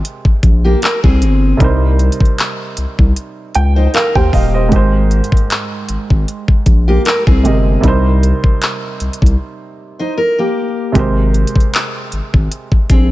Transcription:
0.00 1.55 C3 medium
0.00 1.56 G#3 medium
0.00 1.56 G4 medium
0.00 1.57 A#4 medium
0.00 1.58 C5 medium
0.05 closed hi-hat medium
0.25 kick medium
0.43 0.75 A#1 medium
0.43 kick loud
0.43 closed hi-hat medium
0.64 0.82 A#3 medium
0.64 0.81 G4 medium
0.82 1.02 A#4 medium
0.82 clap loud
0.82 closed hi-hat medium
1.03 1.23 C2 medium
1.03 1.58 C4 medium
1.03 1.57 G#4 medium
1.03 kick loud
1.22 1.54 G1 loud
1.22 closed hi-hat medium
1.57 2.10 C2 loud
1.57 4.66 C3 medium
1.57 4.67 G3 medium
1.57 4.68 D#4 medium
1.57 kick loud
1.57 closed hi-hat medium
1.62 4.69 A#4 medium
1.62 3.92 C5 medium
1.99 closed hi-hat medium
2.12 closed hi-hat medium
2.20 kick loud
2.25 closed hi-hat medium
2.38 clap loud
2.38 closed hi-hat medium
2.77 2.86 C2 medium
2.77 closed hi-hat medium
2.99 3.13 C2 loud
2.99 kick medium
3.16 closed hi-hat medium
3.55 3.87 C#2 medium
3.55 3.91 G5 medium
3.55 closed hi-hat medium
3.76 3.93 D#4 medium
3.76 3.93 C5 medium
3.94 4.14 A#4 medium
3.94 4.14 F5 medium
3.94 clap loud
3.94 closed hi-hat medium
4.15 4.30 D#2 medium
4.15 4.69 A#3 medium
4.15 4.69 G4 medium
4.15 4.32 C5 medium
4.15 4.32 G5 medium
4.15 kick loud
4.33 4.74 D#1 medium
4.33 4.53 D#5 medium
4.33 4.53 F5 medium
4.33 kick medium
4.33 open hi-hat medium
4.54 4.74 C5 medium
4.54 4.91 D#5 medium
4.69 5.21 G#1 loud
4.69 7.39 G#2 medium
4.69 7.40 G#3 medium
4.69 7.41 G4 medium
4.69 kick loud
4.69 closed hi-hat medium
4.74 7.42 A#4 medium
4.74 7.43 C5 medium
5.11 closed hi-hat medium
5.24 closed hi-hat medium
5.32 kick loud
5.37 closed hi-hat medium
5.50 clap loud
5.50 closed hi-hat medium
5.89 5.97 G#1 medium
5.89 closed hi-hat medium
6.10 6.25 G#1 medium
6.10 kick medium
6.28 closed hi-hat medium
6.48 kick medium
6.66 6.98 A#1 loud
6.66 kick loud
6.66 closed hi-hat medium
6.88 7.05 A#3 medium
6.88 7.05 G4 medium
7.05 7.26 A#4 medium
7.05 clap loud
7.05 closed hi-hat medium
7.27 7.47 C2 medium
7.27 7.81 C4 medium
7.27 7.81 G#4 medium
7.27 kick loud
7.43 7.77 G1 loud
7.43 7.79 C3 medium
7.43 7.83 G#3 medium
7.43 7.84 G4 medium
7.43 7.84 A#4 medium
7.43 7.85 D#5 medium
7.43 closed hi-hat medium
7.81 8.33 C2 loud
7.81 10.90 C3 medium
7.81 10.91 G3 medium
7.81 10.92 D#4 medium
7.81 kick loud
7.81 closed hi-hat medium
7.86 10.93 A#4 medium
7.86 10.93 C5 medium
8.23 closed hi-hat medium
8.44 kick loud
8.62 clap loud
8.62 closed hi-hat medium
9.00 9.09 C2 medium
9.00 closed hi-hat medium
9.13 closed hi-hat medium
9.22 9.37 C2 medium
9.22 kick medium
9.26 closed hi-hat medium
9.99 10.17 D#4 medium
9.99 10.16 C5 medium
10.17 10.37 A#4 medium
10.38 10.93 A#3 medium
10.38 10.92 G4 medium
10.92 11.45 G#1 loud
10.92 13.12 C3 medium
10.92 13.12 G#3 medium
10.92 13.12 G4 medium
10.92 kick loud
10.92 closed hi-hat medium
10.97 13.12 A#4 medium
10.97 13.12 C5 medium
11.34 closed hi-hat medium
11.47 closed hi-hat medium
11.56 kick loud
11.60 closed hi-hat medium
11.74 clap loud
11.74 closed hi-hat medium
12.12 12.21 G#1 soft
12.12 closed hi-hat medium
12.34 12.48 G#1 medium
12.34 kick medium
12.52 closed hi-hat medium
12.72 kick medium
12.90 13.12 A#1 medium
12.90 13.10 C4 medium
12.90 13.10 G#4 medium
12.90 kick medium
12.90 closed hi-hat medium

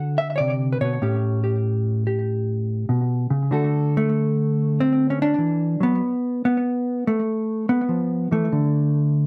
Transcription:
0.00 1.01 D3 medium
0.00 1.00 D4 soft
0.00 1.00 F#4 soft
0.00 0.35 A4 soft
0.00 0.18 F#5 medium
0.18 0.27 E5 medium
0.36 0.39 C#5 medium
0.36 0.54 D5 medium
0.40 0.81 C3 medium
0.73 0.81 B4 medium
0.81 1.01 B2 medium
0.81 3.51 C#5 medium
1.02 2.89 A2 medium
1.02 3.49 C#4 soft
1.02 1.42 G4 soft
1.44 2.06 G4 soft
2.07 3.49 G4 soft
2.89 3.30 B2 medium
3.30 3.51 C#3 medium
3.51 5.38 D3 medium
3.51 3.94 A3 soft
3.51 5.99 F#4 soft
3.51 6.02 A4 soft
3.97 5.40 A3 medium
4.80 5.10 C4 medium
5.10 5.19 C#4 medium
5.22 6.03 D4 loud
5.38 5.80 E3 medium
5.80 6.01 F#3 medium
5.80 6.44 B3 loud
6.45 7.07 B3 medium
7.07 7.69 A3 medium
7.69 8.32 B3 medium
7.89 8.31 F3 medium
8.32 8.51 E3 medium
8.32 9.27 A3 medium
8.52 9.27 D3 medium

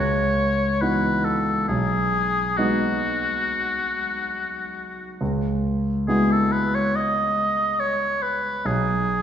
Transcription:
0.00 0.79 C#2 medium
0.00 0.83 C#5 medium
0.81 1.64 E3 soft
0.81 1.64 B3 soft
0.81 1.64 D#4 soft
0.81 1.64 F#4 soft
0.81 1.26 B4 medium
1.25 1.68 A4 medium
1.68 2.55 B1 medium
1.68 2.59 G#4 medium
2.57 5.17 G#3 soft
2.57 5.17 B3 soft
2.57 5.17 D#4 soft
2.57 5.20 F#4 medium
2.57 5.17 F#4 soft
5.21 6.06 C#2 medium
6.08 8.61 G#3 soft
6.08 8.61 B3 soft
6.08 8.62 E4 soft
6.08 8.62 F#4 soft
6.08 6.33 G#4 medium
6.31 6.54 A4 medium
6.52 6.76 B4 medium
6.75 6.97 C#5 medium
6.96 7.81 D#5 medium
7.80 8.24 C#5 medium
8.23 8.67 B4 medium
8.65 9.22 B1 medium
8.65 9.22 G#4 medium

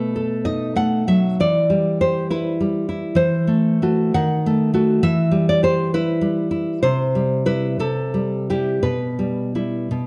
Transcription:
0.00 1.36 B2 soft
0.00 0.74 A3 soft
0.00 0.44 B4 medium
0.16 1.08 A4 soft
0.45 1.38 D#4 soft
0.45 0.75 D#5 medium
0.76 1.07 A3 soft
0.76 1.07 F#5 medium
1.07 1.39 F#3 soft
1.07 1.38 E5 medium
1.40 3.13 E3 soft
1.40 1.98 D5 medium
1.70 2.59 G3 soft
2.01 2.31 G4 soft
2.01 2.29 C5 medium
2.30 2.88 E4 soft
2.30 3.14 B4 medium
2.60 3.18 G3 soft
2.89 3.18 E4 soft
3.15 4.11 E3 medium
3.15 4.11 C5 medium
3.47 3.81 A3 soft
3.82 4.12 A3 soft
3.82 4.12 F#4 soft
4.14 5.02 D#3 medium
4.14 5.01 F#5 medium
4.46 4.72 A3 soft
4.74 5.01 A3 soft
4.74 5.01 F#4 soft
5.03 6.80 E3 medium
5.03 5.47 E5 medium
5.31 6.20 G3 soft
5.49 5.63 D5 medium
5.63 5.94 G4 soft
5.63 5.92 C5 medium
5.94 6.50 E4 soft
5.94 6.81 B4 medium
6.21 6.84 G3 soft
6.51 6.82 E4 soft
6.83 7.78 C3 medium
6.83 7.45 C5 medium
7.15 7.44 G3 soft
7.46 7.77 G3 soft
7.46 7.77 E4 soft
7.46 7.79 B4 medium
7.79 8.81 C3 medium
7.79 8.46 A4 medium
8.14 8.49 G3 soft
8.50 8.81 G3 soft
8.50 8.81 E4 soft
8.50 8.83 G4 medium
8.83 9.88 B2 soft
8.83 9.87 B4 medium
9.19 9.54 G3 soft
9.55 9.88 G3 soft
9.55 9.88 E4 soft
9.91 10.07 B2 soft

